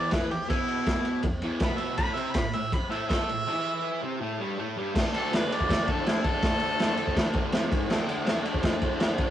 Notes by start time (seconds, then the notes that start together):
Already playing: E2 E3 D5
0.11 E3 E4 B4, kick, snare, ride
0.31 E2 G4, ride
0.48 B2 B3 E4, kick, ride
0.68 ride
0.86 kick, snare, ride
1.05 ride
1.23 E2, kick, ride
1.42 E2 E3, ride
1.60 B2 B3 B5, kick, snare, ride
1.78 E5, ride
1.97 A2 A3 B5, kick, ride
2.15 C3 C4 E5, ride
2.32 A2 B5, kick, snare, ride
2.53 A2 E5, ride
2.72 B5, kick, ride
2.89 A2 A3 E5, ride
3.09 A3 A4 E5, kick, snare, ride
3.28 A2, ride
3.47 E3 E4
4.03 C3 C4
4.21 A2 A3
4.40 G2 G3
4.58 A2 A3
4.76 G2 G3
4.94 D3 A3 D4, kick, snare, crash
5.12 D3 A3 D4 A4, ride
5.32 D3 A3 D4 B4, snare, ride
5.50 D3 A3 D4 D5, ride
5.60 kick
5.70 D3 A3 D4, kick, snare, ride
5.88 D3 A3 D4 A4, kick, ride
6.06 D3 A3 D4 E4, snare, ride
6.24 D3 A3 D4 A4, kick, ride
6.42 D3 A3 D4, kick, snare, ride
6.60 D3 A3 D4, ride
6.79 D3 A3 D4, snare, ride
6.97 D3 A3 D4, ride
7.07 kick
7.16 D3 A3 D4, kick, snare, ride
7.33 D3 A3 D4, kick, ride
7.52 F2 C3 F3, snare, ride
7.71 G#2 D#3 G#3, kick, ride
7.90 D3 A3 D4, snare, crash
8.07 D3 A3 D4, ride
8.25 D3 A3 D4, snare, ride
8.45 D3 A3 D4, ride
8.54 kick
8.63 D3 A3 D4, kick, snare, ride
8.82 D3 A3 D4, kick, ride
9.00 D3 A3 D4, snare, ride
9.18 D3 A3 D4, kick, ride